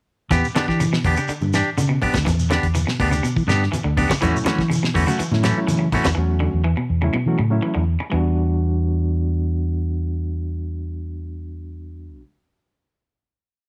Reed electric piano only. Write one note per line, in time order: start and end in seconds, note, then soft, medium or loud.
4.21 4.65 F#3 medium
4.21 4.65 A3 medium
4.21 4.65 C#4 medium
4.21 4.65 E4 medium
5.07 5.20 F#3 medium
5.07 5.20 A3 medium
5.07 5.20 C#4 medium
5.07 5.20 F#4 medium
5.32 5.44 F#3 medium
5.32 5.45 A3 medium
5.32 5.45 C#4 medium
5.32 5.45 E4 medium
5.57 5.87 F#3 medium
5.57 5.88 A3 medium
5.57 5.88 C#4 medium
5.57 5.88 E4 medium
6.18 6.60 F#3 medium
6.18 6.61 A3 medium
6.18 6.61 C#4 medium
6.18 6.61 F#4 medium
7.03 7.15 F#3 medium
7.03 7.15 A3 medium
7.03 7.15 C#4 medium
7.03 7.16 E4 medium
7.27 7.39 F#3 medium
7.27 7.40 A3 medium
7.27 7.39 C#4 medium
7.27 7.40 F#4 medium
7.50 7.82 F#3 medium
7.50 7.82 A3 medium
7.50 7.82 C#4 medium
7.50 7.83 E4 medium
8.10 12.18 G3 medium
8.10 12.20 B3 medium
8.10 12.21 D4 medium
8.14 12.23 F#4 medium